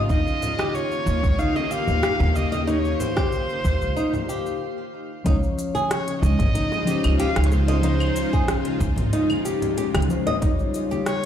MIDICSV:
0, 0, Header, 1, 8, 480
1, 0, Start_track
1, 0, Tempo, 645161
1, 72, Time_signature, 4, 2, 24, 8
1, 8374, End_track
2, 0, Start_track
2, 0, Title_t, "Synth texture"
2, 0, Program_c, 0, 99
2, 0, Note_on_c, 0, 77, 82
2, 3436, Note_off_c, 0, 77, 0
2, 8374, End_track
3, 0, Start_track
3, 0, Title_t, "Kamancheh"
3, 0, Program_c, 1, 110
3, 74, Note_on_c, 1, 75, 110
3, 552, Note_on_c, 1, 73, 109
3, 563, Note_off_c, 1, 75, 0
3, 1033, Note_on_c, 1, 77, 105
3, 1044, Note_off_c, 1, 73, 0
3, 1159, Note_on_c, 1, 75, 95
3, 1170, Note_off_c, 1, 77, 0
3, 1274, Note_on_c, 1, 77, 109
3, 1285, Note_off_c, 1, 75, 0
3, 1753, Note_on_c, 1, 75, 96
3, 1764, Note_off_c, 1, 77, 0
3, 1993, Note_on_c, 1, 73, 103
3, 2004, Note_off_c, 1, 75, 0
3, 2231, Note_on_c, 1, 72, 101
3, 2242, Note_off_c, 1, 73, 0
3, 3432, Note_off_c, 1, 72, 0
3, 4392, Note_on_c, 1, 73, 97
3, 4615, Note_off_c, 1, 73, 0
3, 4632, Note_on_c, 1, 75, 106
3, 5322, Note_off_c, 1, 75, 0
3, 5360, Note_on_c, 1, 77, 114
3, 5550, Note_on_c, 1, 73, 67
3, 5562, Note_off_c, 1, 77, 0
3, 5604, Note_on_c, 1, 72, 97
3, 5615, Note_off_c, 1, 73, 0
3, 6558, Note_off_c, 1, 72, 0
3, 8235, Note_on_c, 1, 73, 103
3, 8374, Note_off_c, 1, 73, 0
3, 8374, End_track
4, 0, Start_track
4, 0, Title_t, "Nylon-string guitar"
4, 0, Program_c, 2, 24
4, 69, Note_on_c, 2, 63, 91
4, 142, Note_off_c, 2, 63, 0
4, 435, Note_on_c, 2, 67, 95
4, 546, Note_off_c, 2, 67, 0
4, 1030, Note_on_c, 2, 63, 80
4, 1150, Note_off_c, 2, 63, 0
4, 1270, Note_on_c, 2, 67, 69
4, 1500, Note_off_c, 2, 67, 0
4, 1509, Note_on_c, 2, 67, 94
4, 1582, Note_off_c, 2, 67, 0
4, 1875, Note_on_c, 2, 75, 91
4, 1942, Note_off_c, 2, 75, 0
4, 1989, Note_on_c, 2, 63, 98
4, 2062, Note_off_c, 2, 63, 0
4, 2355, Note_on_c, 2, 67, 100
4, 2465, Note_off_c, 2, 67, 0
4, 2950, Note_on_c, 2, 63, 80
4, 3070, Note_off_c, 2, 63, 0
4, 3192, Note_on_c, 2, 67, 67
4, 3421, Note_off_c, 2, 67, 0
4, 3911, Note_on_c, 2, 63, 101
4, 3983, Note_off_c, 2, 63, 0
4, 4276, Note_on_c, 2, 68, 93
4, 4386, Note_off_c, 2, 68, 0
4, 4871, Note_on_c, 2, 63, 78
4, 4991, Note_off_c, 2, 63, 0
4, 5112, Note_on_c, 2, 67, 70
4, 5341, Note_off_c, 2, 67, 0
4, 5353, Note_on_c, 2, 67, 94
4, 5424, Note_off_c, 2, 67, 0
4, 5716, Note_on_c, 2, 75, 106
4, 5782, Note_off_c, 2, 75, 0
4, 5831, Note_on_c, 2, 63, 97
4, 5903, Note_off_c, 2, 63, 0
4, 6198, Note_on_c, 2, 68, 97
4, 6307, Note_off_c, 2, 68, 0
4, 6793, Note_on_c, 2, 63, 77
4, 6912, Note_off_c, 2, 63, 0
4, 7032, Note_on_c, 2, 67, 71
4, 7261, Note_off_c, 2, 67, 0
4, 7274, Note_on_c, 2, 67, 100
4, 7345, Note_off_c, 2, 67, 0
4, 7639, Note_on_c, 2, 75, 105
4, 7704, Note_off_c, 2, 75, 0
4, 7751, Note_on_c, 2, 63, 97
4, 7823, Note_off_c, 2, 63, 0
4, 8119, Note_on_c, 2, 67, 99
4, 8227, Note_off_c, 2, 67, 0
4, 8374, End_track
5, 0, Start_track
5, 0, Title_t, "Clean electric guitar"
5, 0, Program_c, 3, 27
5, 3901, Note_on_c, 3, 53, 79
5, 3914, Note_on_c, 3, 61, 64
5, 3930, Note_on_c, 3, 73, 84
5, 5079, Note_off_c, 3, 53, 0
5, 5086, Note_off_c, 3, 61, 0
5, 5094, Note_off_c, 3, 73, 0
5, 5097, Note_on_c, 3, 53, 76
5, 5110, Note_on_c, 3, 61, 75
5, 5126, Note_on_c, 3, 72, 81
5, 5797, Note_off_c, 3, 53, 0
5, 5804, Note_off_c, 3, 61, 0
5, 5812, Note_off_c, 3, 72, 0
5, 5813, Note_on_c, 3, 53, 84
5, 5829, Note_on_c, 3, 61, 69
5, 5843, Note_on_c, 3, 72, 88
5, 7475, Note_off_c, 3, 53, 0
5, 7483, Note_off_c, 3, 61, 0
5, 7490, Note_off_c, 3, 72, 0
5, 7504, Note_on_c, 3, 53, 81
5, 7513, Note_on_c, 3, 61, 69
5, 7519, Note_on_c, 3, 72, 95
5, 7721, Note_off_c, 3, 53, 0
5, 7725, Note_off_c, 3, 61, 0
5, 7728, Note_off_c, 3, 72, 0
5, 7739, Note_on_c, 3, 55, 78
5, 7752, Note_on_c, 3, 63, 68
5, 7768, Note_on_c, 3, 73, 80
5, 8374, Note_off_c, 3, 55, 0
5, 8374, Note_off_c, 3, 63, 0
5, 8374, Note_off_c, 3, 73, 0
5, 8374, End_track
6, 0, Start_track
6, 0, Title_t, "Synth drone"
6, 0, Program_c, 4, 95
6, 0, Note_on_c, 4, 65, 92
6, 66, Note_on_c, 4, 51, 86
6, 66, Note_on_c, 4, 67, 92
6, 68, Note_on_c, 4, 58, 74
6, 3397, Note_off_c, 4, 65, 0
6, 3399, Note_off_c, 4, 51, 0
6, 3399, Note_off_c, 4, 67, 0
6, 3400, Note_off_c, 4, 58, 0
6, 3908, Note_on_c, 4, 65, 89
6, 3909, Note_on_c, 4, 63, 83
6, 3912, Note_on_c, 4, 49, 87
6, 3913, Note_on_c, 4, 56, 77
6, 7721, Note_off_c, 4, 63, 0
6, 7721, Note_off_c, 4, 65, 0
6, 7723, Note_off_c, 4, 49, 0
6, 7723, Note_off_c, 4, 56, 0
6, 7752, Note_on_c, 4, 67, 92
6, 7753, Note_on_c, 4, 58, 75
6, 7754, Note_on_c, 4, 65, 82
6, 7755, Note_on_c, 4, 51, 84
6, 8374, Note_off_c, 4, 51, 0
6, 8374, Note_off_c, 4, 58, 0
6, 8374, Note_off_c, 4, 65, 0
6, 8374, Note_off_c, 4, 67, 0
6, 8374, End_track
7, 0, Start_track
7, 0, Title_t, "Upright bass"
7, 0, Program_c, 5, 32
7, 72, Note_on_c, 5, 39, 95
7, 159, Note_off_c, 5, 39, 0
7, 791, Note_on_c, 5, 39, 92
7, 878, Note_off_c, 5, 39, 0
7, 918, Note_on_c, 5, 37, 82
7, 997, Note_off_c, 5, 37, 0
7, 1395, Note_on_c, 5, 39, 80
7, 1476, Note_off_c, 5, 39, 0
7, 1636, Note_on_c, 5, 39, 101
7, 2175, Note_off_c, 5, 39, 0
7, 2712, Note_on_c, 5, 39, 94
7, 2799, Note_off_c, 5, 39, 0
7, 2840, Note_on_c, 5, 37, 82
7, 2918, Note_off_c, 5, 37, 0
7, 3912, Note_on_c, 5, 37, 97
7, 3999, Note_off_c, 5, 37, 0
7, 4631, Note_on_c, 5, 37, 104
7, 4718, Note_off_c, 5, 37, 0
7, 4757, Note_on_c, 5, 32, 82
7, 4837, Note_off_c, 5, 32, 0
7, 5239, Note_on_c, 5, 37, 84
7, 5318, Note_off_c, 5, 37, 0
7, 5478, Note_on_c, 5, 37, 93
7, 6016, Note_off_c, 5, 37, 0
7, 6550, Note_on_c, 5, 37, 105
7, 6638, Note_off_c, 5, 37, 0
7, 6677, Note_on_c, 5, 32, 83
7, 6756, Note_off_c, 5, 32, 0
7, 7398, Note_on_c, 5, 37, 87
7, 7477, Note_off_c, 5, 37, 0
7, 7753, Note_on_c, 5, 39, 93
7, 7840, Note_off_c, 5, 39, 0
7, 8374, End_track
8, 0, Start_track
8, 0, Title_t, "Drums"
8, 73, Note_on_c, 9, 36, 113
8, 74, Note_on_c, 9, 82, 40
8, 148, Note_off_c, 9, 36, 0
8, 148, Note_off_c, 9, 82, 0
8, 197, Note_on_c, 9, 60, 33
8, 201, Note_on_c, 9, 82, 22
8, 271, Note_off_c, 9, 60, 0
8, 276, Note_off_c, 9, 82, 0
8, 315, Note_on_c, 9, 82, 71
8, 316, Note_on_c, 9, 64, 74
8, 389, Note_off_c, 9, 82, 0
8, 390, Note_off_c, 9, 64, 0
8, 437, Note_on_c, 9, 63, 52
8, 441, Note_on_c, 9, 37, 69
8, 442, Note_on_c, 9, 82, 29
8, 512, Note_off_c, 9, 63, 0
8, 516, Note_off_c, 9, 37, 0
8, 516, Note_off_c, 9, 82, 0
8, 556, Note_on_c, 9, 82, 39
8, 631, Note_off_c, 9, 82, 0
8, 682, Note_on_c, 9, 60, 36
8, 682, Note_on_c, 9, 82, 21
8, 756, Note_off_c, 9, 60, 0
8, 757, Note_off_c, 9, 82, 0
8, 794, Note_on_c, 9, 82, 72
8, 868, Note_off_c, 9, 82, 0
8, 919, Note_on_c, 9, 36, 97
8, 921, Note_on_c, 9, 82, 29
8, 924, Note_on_c, 9, 63, 30
8, 993, Note_off_c, 9, 36, 0
8, 995, Note_off_c, 9, 82, 0
8, 998, Note_off_c, 9, 63, 0
8, 1035, Note_on_c, 9, 82, 41
8, 1036, Note_on_c, 9, 63, 68
8, 1110, Note_off_c, 9, 82, 0
8, 1111, Note_off_c, 9, 63, 0
8, 1159, Note_on_c, 9, 82, 20
8, 1161, Note_on_c, 9, 60, 65
8, 1234, Note_off_c, 9, 82, 0
8, 1236, Note_off_c, 9, 60, 0
8, 1272, Note_on_c, 9, 82, 76
8, 1346, Note_off_c, 9, 82, 0
8, 1395, Note_on_c, 9, 64, 76
8, 1398, Note_on_c, 9, 82, 31
8, 1470, Note_off_c, 9, 64, 0
8, 1472, Note_off_c, 9, 82, 0
8, 1512, Note_on_c, 9, 37, 78
8, 1512, Note_on_c, 9, 82, 42
8, 1586, Note_off_c, 9, 37, 0
8, 1587, Note_off_c, 9, 82, 0
8, 1636, Note_on_c, 9, 63, 64
8, 1637, Note_on_c, 9, 64, 80
8, 1638, Note_on_c, 9, 82, 20
8, 1710, Note_off_c, 9, 63, 0
8, 1712, Note_off_c, 9, 64, 0
8, 1712, Note_off_c, 9, 82, 0
8, 1752, Note_on_c, 9, 82, 70
8, 1753, Note_on_c, 9, 60, 54
8, 1762, Note_on_c, 9, 63, 58
8, 1827, Note_off_c, 9, 60, 0
8, 1827, Note_off_c, 9, 82, 0
8, 1836, Note_off_c, 9, 63, 0
8, 1878, Note_on_c, 9, 82, 30
8, 1880, Note_on_c, 9, 60, 66
8, 1952, Note_off_c, 9, 82, 0
8, 1954, Note_off_c, 9, 60, 0
8, 1994, Note_on_c, 9, 82, 38
8, 2069, Note_off_c, 9, 82, 0
8, 2120, Note_on_c, 9, 82, 20
8, 2121, Note_on_c, 9, 60, 35
8, 2195, Note_off_c, 9, 82, 0
8, 2196, Note_off_c, 9, 60, 0
8, 2233, Note_on_c, 9, 82, 77
8, 2234, Note_on_c, 9, 64, 74
8, 2308, Note_off_c, 9, 82, 0
8, 2309, Note_off_c, 9, 64, 0
8, 2357, Note_on_c, 9, 37, 71
8, 2358, Note_on_c, 9, 36, 97
8, 2358, Note_on_c, 9, 82, 30
8, 2363, Note_on_c, 9, 63, 62
8, 2431, Note_off_c, 9, 37, 0
8, 2432, Note_off_c, 9, 82, 0
8, 2433, Note_off_c, 9, 36, 0
8, 2437, Note_off_c, 9, 63, 0
8, 2471, Note_on_c, 9, 82, 42
8, 2546, Note_off_c, 9, 82, 0
8, 2598, Note_on_c, 9, 82, 20
8, 2601, Note_on_c, 9, 60, 33
8, 2672, Note_off_c, 9, 82, 0
8, 2675, Note_off_c, 9, 60, 0
8, 2712, Note_on_c, 9, 36, 56
8, 2712, Note_on_c, 9, 82, 73
8, 2786, Note_off_c, 9, 82, 0
8, 2787, Note_off_c, 9, 36, 0
8, 2838, Note_on_c, 9, 63, 35
8, 2838, Note_on_c, 9, 82, 31
8, 2912, Note_off_c, 9, 63, 0
8, 2912, Note_off_c, 9, 82, 0
8, 2953, Note_on_c, 9, 82, 39
8, 3027, Note_off_c, 9, 82, 0
8, 3072, Note_on_c, 9, 63, 52
8, 3078, Note_on_c, 9, 64, 81
8, 3079, Note_on_c, 9, 82, 20
8, 3147, Note_off_c, 9, 63, 0
8, 3152, Note_off_c, 9, 64, 0
8, 3154, Note_off_c, 9, 82, 0
8, 3193, Note_on_c, 9, 82, 73
8, 3267, Note_off_c, 9, 82, 0
8, 3319, Note_on_c, 9, 82, 31
8, 3393, Note_off_c, 9, 82, 0
8, 3912, Note_on_c, 9, 42, 58
8, 3913, Note_on_c, 9, 36, 117
8, 3913, Note_on_c, 9, 82, 43
8, 3987, Note_off_c, 9, 42, 0
8, 3987, Note_off_c, 9, 82, 0
8, 3988, Note_off_c, 9, 36, 0
8, 4040, Note_on_c, 9, 82, 22
8, 4115, Note_off_c, 9, 82, 0
8, 4156, Note_on_c, 9, 42, 32
8, 4156, Note_on_c, 9, 82, 83
8, 4230, Note_off_c, 9, 42, 0
8, 4230, Note_off_c, 9, 82, 0
8, 4281, Note_on_c, 9, 63, 59
8, 4281, Note_on_c, 9, 82, 31
8, 4355, Note_off_c, 9, 82, 0
8, 4356, Note_off_c, 9, 63, 0
8, 4396, Note_on_c, 9, 37, 84
8, 4396, Note_on_c, 9, 42, 57
8, 4397, Note_on_c, 9, 82, 43
8, 4470, Note_off_c, 9, 37, 0
8, 4470, Note_off_c, 9, 42, 0
8, 4471, Note_off_c, 9, 82, 0
8, 4518, Note_on_c, 9, 60, 39
8, 4522, Note_on_c, 9, 42, 49
8, 4522, Note_on_c, 9, 82, 24
8, 4593, Note_off_c, 9, 60, 0
8, 4596, Note_off_c, 9, 42, 0
8, 4597, Note_off_c, 9, 82, 0
8, 4636, Note_on_c, 9, 42, 32
8, 4637, Note_on_c, 9, 82, 79
8, 4711, Note_off_c, 9, 42, 0
8, 4711, Note_off_c, 9, 82, 0
8, 4753, Note_on_c, 9, 64, 83
8, 4759, Note_on_c, 9, 36, 107
8, 4759, Note_on_c, 9, 42, 44
8, 4760, Note_on_c, 9, 63, 39
8, 4760, Note_on_c, 9, 82, 30
8, 4827, Note_off_c, 9, 64, 0
8, 4833, Note_off_c, 9, 36, 0
8, 4834, Note_off_c, 9, 42, 0
8, 4834, Note_off_c, 9, 82, 0
8, 4835, Note_off_c, 9, 63, 0
8, 4872, Note_on_c, 9, 63, 74
8, 4875, Note_on_c, 9, 42, 58
8, 4876, Note_on_c, 9, 82, 46
8, 4946, Note_off_c, 9, 63, 0
8, 4950, Note_off_c, 9, 42, 0
8, 4950, Note_off_c, 9, 82, 0
8, 4998, Note_on_c, 9, 60, 76
8, 5003, Note_on_c, 9, 82, 22
8, 5073, Note_off_c, 9, 60, 0
8, 5078, Note_off_c, 9, 82, 0
8, 5113, Note_on_c, 9, 42, 33
8, 5114, Note_on_c, 9, 82, 82
8, 5187, Note_off_c, 9, 42, 0
8, 5188, Note_off_c, 9, 82, 0
8, 5239, Note_on_c, 9, 42, 46
8, 5239, Note_on_c, 9, 75, 78
8, 5239, Note_on_c, 9, 82, 33
8, 5313, Note_off_c, 9, 42, 0
8, 5313, Note_off_c, 9, 75, 0
8, 5314, Note_off_c, 9, 82, 0
8, 5353, Note_on_c, 9, 42, 60
8, 5354, Note_on_c, 9, 82, 45
8, 5427, Note_off_c, 9, 42, 0
8, 5428, Note_off_c, 9, 82, 0
8, 5477, Note_on_c, 9, 37, 80
8, 5477, Note_on_c, 9, 42, 44
8, 5477, Note_on_c, 9, 82, 22
8, 5481, Note_on_c, 9, 63, 61
8, 5532, Note_off_c, 9, 42, 0
8, 5532, Note_on_c, 9, 42, 57
8, 5551, Note_off_c, 9, 37, 0
8, 5552, Note_off_c, 9, 82, 0
8, 5555, Note_off_c, 9, 63, 0
8, 5591, Note_on_c, 9, 82, 75
8, 5593, Note_on_c, 9, 60, 61
8, 5594, Note_on_c, 9, 63, 69
8, 5607, Note_off_c, 9, 42, 0
8, 5666, Note_off_c, 9, 82, 0
8, 5667, Note_off_c, 9, 60, 0
8, 5668, Note_off_c, 9, 63, 0
8, 5716, Note_on_c, 9, 42, 43
8, 5716, Note_on_c, 9, 60, 68
8, 5717, Note_on_c, 9, 82, 32
8, 5790, Note_off_c, 9, 42, 0
8, 5790, Note_off_c, 9, 60, 0
8, 5791, Note_off_c, 9, 82, 0
8, 5828, Note_on_c, 9, 42, 56
8, 5828, Note_on_c, 9, 82, 47
8, 5902, Note_off_c, 9, 42, 0
8, 5903, Note_off_c, 9, 82, 0
8, 5954, Note_on_c, 9, 75, 73
8, 5955, Note_on_c, 9, 82, 22
8, 5959, Note_on_c, 9, 60, 29
8, 6029, Note_off_c, 9, 75, 0
8, 6029, Note_off_c, 9, 82, 0
8, 6034, Note_off_c, 9, 60, 0
8, 6071, Note_on_c, 9, 42, 33
8, 6071, Note_on_c, 9, 82, 82
8, 6145, Note_off_c, 9, 42, 0
8, 6146, Note_off_c, 9, 82, 0
8, 6198, Note_on_c, 9, 36, 113
8, 6198, Note_on_c, 9, 82, 32
8, 6199, Note_on_c, 9, 63, 65
8, 6272, Note_off_c, 9, 36, 0
8, 6272, Note_off_c, 9, 82, 0
8, 6273, Note_off_c, 9, 63, 0
8, 6311, Note_on_c, 9, 37, 79
8, 6311, Note_on_c, 9, 42, 54
8, 6312, Note_on_c, 9, 82, 45
8, 6386, Note_off_c, 9, 37, 0
8, 6386, Note_off_c, 9, 42, 0
8, 6386, Note_off_c, 9, 82, 0
8, 6433, Note_on_c, 9, 60, 39
8, 6436, Note_on_c, 9, 42, 46
8, 6436, Note_on_c, 9, 82, 24
8, 6508, Note_off_c, 9, 60, 0
8, 6510, Note_off_c, 9, 42, 0
8, 6511, Note_off_c, 9, 82, 0
8, 6552, Note_on_c, 9, 36, 62
8, 6552, Note_on_c, 9, 42, 33
8, 6552, Note_on_c, 9, 82, 83
8, 6626, Note_off_c, 9, 42, 0
8, 6627, Note_off_c, 9, 36, 0
8, 6627, Note_off_c, 9, 82, 0
8, 6668, Note_on_c, 9, 64, 85
8, 6674, Note_on_c, 9, 63, 37
8, 6678, Note_on_c, 9, 42, 43
8, 6679, Note_on_c, 9, 82, 33
8, 6743, Note_off_c, 9, 64, 0
8, 6749, Note_off_c, 9, 63, 0
8, 6753, Note_off_c, 9, 42, 0
8, 6753, Note_off_c, 9, 82, 0
8, 6792, Note_on_c, 9, 42, 54
8, 6792, Note_on_c, 9, 82, 45
8, 6866, Note_off_c, 9, 42, 0
8, 6867, Note_off_c, 9, 82, 0
8, 6913, Note_on_c, 9, 63, 60
8, 6917, Note_on_c, 9, 75, 72
8, 6918, Note_on_c, 9, 82, 21
8, 6988, Note_off_c, 9, 63, 0
8, 6992, Note_off_c, 9, 75, 0
8, 6992, Note_off_c, 9, 82, 0
8, 7033, Note_on_c, 9, 42, 34
8, 7034, Note_on_c, 9, 82, 87
8, 7108, Note_off_c, 9, 42, 0
8, 7108, Note_off_c, 9, 82, 0
8, 7157, Note_on_c, 9, 64, 73
8, 7160, Note_on_c, 9, 42, 43
8, 7161, Note_on_c, 9, 82, 35
8, 7231, Note_off_c, 9, 64, 0
8, 7235, Note_off_c, 9, 42, 0
8, 7235, Note_off_c, 9, 82, 0
8, 7274, Note_on_c, 9, 42, 60
8, 7274, Note_on_c, 9, 82, 48
8, 7348, Note_off_c, 9, 42, 0
8, 7348, Note_off_c, 9, 82, 0
8, 7398, Note_on_c, 9, 63, 61
8, 7399, Note_on_c, 9, 37, 80
8, 7399, Note_on_c, 9, 42, 39
8, 7399, Note_on_c, 9, 75, 72
8, 7400, Note_on_c, 9, 82, 21
8, 7457, Note_off_c, 9, 42, 0
8, 7457, Note_on_c, 9, 42, 55
8, 7472, Note_off_c, 9, 63, 0
8, 7474, Note_off_c, 9, 37, 0
8, 7474, Note_off_c, 9, 75, 0
8, 7474, Note_off_c, 9, 82, 0
8, 7513, Note_on_c, 9, 82, 79
8, 7531, Note_off_c, 9, 42, 0
8, 7588, Note_off_c, 9, 82, 0
8, 7639, Note_on_c, 9, 42, 44
8, 7640, Note_on_c, 9, 82, 34
8, 7646, Note_on_c, 9, 64, 98
8, 7713, Note_off_c, 9, 42, 0
8, 7714, Note_off_c, 9, 82, 0
8, 7720, Note_off_c, 9, 64, 0
8, 7753, Note_on_c, 9, 36, 127
8, 7754, Note_on_c, 9, 42, 54
8, 7754, Note_on_c, 9, 82, 44
8, 7828, Note_off_c, 9, 36, 0
8, 7828, Note_off_c, 9, 42, 0
8, 7829, Note_off_c, 9, 82, 0
8, 7879, Note_on_c, 9, 82, 24
8, 7954, Note_off_c, 9, 82, 0
8, 7992, Note_on_c, 9, 42, 31
8, 7992, Note_on_c, 9, 82, 84
8, 8066, Note_off_c, 9, 42, 0
8, 8067, Note_off_c, 9, 82, 0
8, 8118, Note_on_c, 9, 82, 33
8, 8125, Note_on_c, 9, 63, 63
8, 8192, Note_off_c, 9, 82, 0
8, 8199, Note_off_c, 9, 63, 0
8, 8231, Note_on_c, 9, 37, 76
8, 8231, Note_on_c, 9, 42, 50
8, 8232, Note_on_c, 9, 82, 46
8, 8306, Note_off_c, 9, 37, 0
8, 8306, Note_off_c, 9, 42, 0
8, 8306, Note_off_c, 9, 82, 0
8, 8374, End_track
0, 0, End_of_file